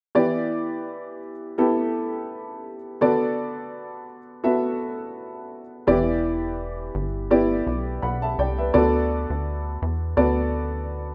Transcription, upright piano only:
0.15 1.18 E3 medium
0.15 1.32 B3 medium
0.15 1.32 E4 medium
0.15 1.32 G4 medium
0.15 1.32 D5 medium
1.58 2.75 B3 medium
1.58 2.75 E4 medium
1.58 2.75 G4 medium
1.58 2.75 A4 medium
3.01 4.05 D3 medium
3.01 4.18 B3 medium
3.01 4.18 F#4 medium
3.01 4.18 A4 medium
3.01 4.19 D5 medium
4.44 5.61 B3 medium
4.44 5.61 F#4 medium
4.44 5.61 A4 medium
4.44 5.61 E5 medium
5.87 6.91 E3 medium
5.87 7.04 B3 medium
5.87 7.04 E4 medium
5.87 7.05 G4 medium
5.87 7.05 D5 medium
7.31 8.48 B3 medium
7.31 8.48 E4 medium
7.31 8.48 G4 medium
7.31 7.67 D5 medium
8.02 8.22 F#5 soft
8.02 8.22 B5 medium
8.22 8.38 E5 soft
8.22 8.37 A5 medium
8.39 8.58 D5 soft
8.39 8.58 G5 medium
8.58 8.93 B4 soft
8.58 8.92 E5 soft
8.74 9.77 D3 medium
8.74 9.91 B3 medium
8.74 9.91 F#4 medium
8.74 9.91 A4 medium
8.74 9.91 D5 medium
10.17 11.15 B3 medium
10.17 11.15 F#4 medium
10.17 11.15 A4 medium
10.17 11.15 D5 medium

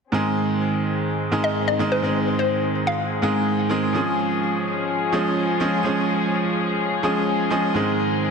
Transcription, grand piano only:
0.12 1.29 G#2 medium
0.12 1.29 D#3 medium
0.12 1.29 G#3 medium
0.12 1.30 C4 medium
0.12 1.30 G#4 medium
1.32 1.77 G#2 medium
1.32 1.77 D#3 medium
1.32 1.77 G#3 medium
1.32 1.77 C4 medium
1.32 1.77 G#4 medium
1.79 2.00 G#2 medium
1.79 2.00 D#3 medium
1.79 2.01 G#3 medium
1.79 2.01 C4 medium
1.79 2.01 G#4 loud
2.02 3.19 G#2 medium
2.02 3.19 D#3 medium
2.02 3.20 G#3 medium
2.02 3.20 C4 medium
2.02 3.20 G#4 medium
3.22 3.67 G#2 medium
3.22 3.67 D#3 medium
3.22 3.67 G#3 medium
3.22 3.68 C4 medium
3.22 3.68 G#4 medium
3.69 3.91 D#3 medium
3.69 3.91 G#3 medium
3.69 3.91 C4 medium
3.69 3.91 G#4 loud
3.93 5.10 F3 medium
3.93 5.10 G#3 medium
3.93 5.11 C#4 medium
3.93 5.11 G#4 medium
5.12 5.58 F3 medium
5.12 5.58 G#3 medium
5.12 5.58 C#4 medium
5.12 5.58 G#4 medium
5.60 5.81 F3 medium
5.60 5.82 G#3 medium
5.60 5.82 C#4 medium
5.60 5.82 G#4 medium
5.83 7.00 F3 medium
5.83 7.01 G#3 medium
5.83 7.01 C#4 medium
5.83 7.01 G#4 medium
7.03 7.48 F3 medium
7.03 7.48 G#3 medium
7.03 7.48 C#4 medium
7.03 7.49 G#4 medium
7.50 7.72 F3 medium
7.50 7.72 G#3 medium
7.50 7.72 C#4 medium
7.50 7.72 G#4 medium
7.74 8.31 G#2 medium
7.74 8.31 D#3 medium
7.74 8.31 G#3 medium
7.74 8.31 C4 medium
7.74 8.31 G#4 medium

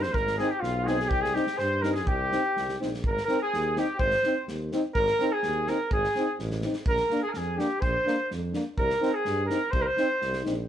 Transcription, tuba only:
0.00 0.16 G2 medium
0.15 0.41 G#1 medium
0.62 1.13 B1 loud
1.11 1.38 C2 medium
1.59 2.10 G2 medium
2.09 2.35 C2 medium
2.57 2.78 C2 medium
2.82 3.02 A#1 medium
3.06 3.18 G#1 medium
3.54 3.80 D#2 medium
4.01 4.13 G#1 medium
4.48 4.74 D#2 medium
4.96 5.09 G#1 loud
5.43 5.70 D#2 medium
5.92 6.05 G#1 medium
6.39 6.65 A1 medium
6.87 7.00 A#1 medium
7.36 7.62 F2 medium
7.83 7.96 A#1 medium
8.32 8.58 F2 medium
8.79 8.92 C2 loud
9.26 9.52 G2 medium
9.74 9.87 C2 medium
10.22 10.43 C2 medium
10.46 10.67 A#1 medium

